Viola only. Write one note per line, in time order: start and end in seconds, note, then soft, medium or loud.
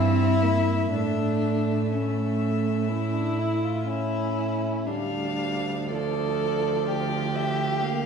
0.00 0.44 C4 medium
0.43 0.94 A#3 medium
0.92 1.81 A3 medium
1.91 2.90 A3 medium
2.89 3.88 E4 medium
3.88 4.87 C#4 medium
4.89 5.94 G3 medium
5.92 7.84 F3 medium
7.83 8.06 A#3 medium